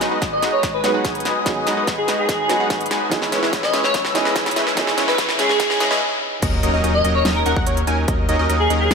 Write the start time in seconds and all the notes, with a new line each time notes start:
Already playing: F#3 B3 C#4 D#4 G#4 B4 G#5 D#6, riser
0.01 B1 G#3 D#4 F#4 B4 D#5, snare, closed hi-hat
0.11 B1 G#3 D#4 F#4 B4 D#5
0.22 B1 G#3 D#4 F#4 D#5, kick, snare, closed hi-hat
0.32 D#5
0.42 B1 G#3 D#4 F#4 B4 D#5, snare, closed hi-hat
0.53 C#5
0.63 B1 G#3 D#4 F#4 B4 D#5, kick, snare, closed hi-hat
0.74 B4
0.82 B1 F#3 G#3 B3 C#4 D#4 F#4 G#4 B4 F#5, snare, closed hi-hat
0.94 B1 G#3 D#4 F#4 B4 F#5
1.04 B1 G#3 D#4 F#4 B4 C#5, kick, snare, closed hi-hat
1.15 closed hi-hat
1.20 closed hi-hat
1.25 B1 G#3 D#4 F#4 B4 G#5, snare, closed hi-hat
1.44 B1 F#3 G#3 B3 C#4 D#4 F#4 G#4 B4 D#5, kick, snare, closed hi-hat
1.67 B1 G#3 D#4 F#4 B4 D#5, snare, closed hi-hat
1.77 B1 G#3 D#4 F#4 B4 D#5
1.87 B1 G#3 D#4 F#4 B4 D#5, kick, snare, closed hi-hat
1.98 G#4
2.08 B1 G#3 D#4 F#4 B4 D#5, snare, closed hi-hat
2.18 G#4
2.29 B1 G#3 D#4 F#4 B4 D#5, kick, snare, closed hi-hat
2.47 B1 F#3 G#3 B3 C#4 D#4 F#4 B4 F#5, snare, closed hi-hat
2.51 G#4
2.60 B1 G#3 D#4 F#4 B4 F#5
2.70 B1 G#3 D#4 F#4 B4 C#5, kick, snare, closed hi-hat
2.81 closed hi-hat
2.86 closed hi-hat
2.91 B1 G#3 D#4 F#4 B4 G#5, snare, closed hi-hat
3.10 C#2 E3 G#3 B3 C#4 D#4 E4 G#4 B4 C#5 B5 E6, kick, snare, closed hi-hat
3.22 snare
3.32 C#2 G#3 C#4 E4 B4 C#5, snare, closed hi-hat
3.42 C#2 G#3 C#4 E4 B4 C#5, snare
3.53 C#2 G#3 C#4 E4 B4 C#5, kick, snare, closed hi-hat
3.63 D#5, snare
3.73 C#2 G#3 C#4 E4 B4 C#5, snare, closed hi-hat
3.84 C#5, snare
3.94 C#2 G#3 C#4 E4 B4 C#5, kick, snare, closed hi-hat
4.05 snare
4.13 C#2 E3 G#3 B3 C#4 D#4 E4 B4 D#5, snare, closed hi-hat
4.17 G#4
4.25 C#2 G#3 C#4 E4 B4 D#5, snare
4.36 C#2 G#3 C#4 E4 B4, kick, snare, closed hi-hat
4.46 snare, closed hi-hat
4.51 closed hi-hat
4.56 C#2 G#3 C#4 E4 B4 E5, snare, closed hi-hat
4.67 snare
4.75 C#2 E3 G#3 B3 C#4 D#4 E4 B4 C#5, kick, snare, closed hi-hat
4.79 G#4
4.87 snare
4.98 C#2 G#3 C#4 E4 B4 C#5, snare, closed hi-hat
5.08 C#2 G#3 C#4 E4 B4 C#5, snare
5.18 C#2 G#3 C#4 E4 B4 C#5, kick, snare, closed hi-hat
5.29 snare
5.39 C#2 G#3 C#4 E4 G#4 B4 C#5, snare, closed hi-hat
5.49 snare
5.60 C#2 G#3 C#4 E4 B4 C#5, kick, snare, closed hi-hat
5.70 snare
5.80 C#2 G#3 C#4 E4 B4 D#5, snare, closed hi-hat
5.91 C#2 G#3 C#4 E4 B4 D#5, snare
6.42 D#2 F#3 C#4 D#4 A#4 D#5, kick, closed hi-hat, crash, impact
6.63 D#2 F#3 C#4 D#4 A#4 D#5, closed hi-hat
6.73 D#2 F#3 C#4 D#4 A#4 D#5
6.84 D#2 F#3 C#4 D#4 A#4 D#5, closed hi-hat
6.94 D#5
7.04 D#2 F#3 C#4 D#4 A#4 D#5, closed hi-hat
7.15 C#5
7.25 D#2 F#3 C#4 D#4 A#4 D#5, snare, closed hi-hat
7.36 A#4
7.46 D#2 F#3 C#4 D#4 A#4 F#5, closed hi-hat
7.56 D#2 F#3 F#5, kick
7.67 D#2 F#3 C#4 D#4 A#4 C#5, closed hi-hat
7.77 closed hi-hat
7.87 D#2 F#3 C#4 D#4 A#4 G#5, closed hi-hat
8.08 D#2 C#4 D#4 A#4 D#5, kick, closed hi-hat
8.29 D#2 F#3 C#4 D#4 A#4 D#5, closed hi-hat
8.39 D#2 F#3 C#4 D#4 A#4 D#5
8.49 D#2 F#3 C#4 D#4 A#4 D#5, closed hi-hat
8.60 G#4
8.70 D#2 F#3 C#4 D#4 A#4 D#5, closed hi-hat
8.80 G#4
8.91 D#2 D#5, snare, closed hi-hat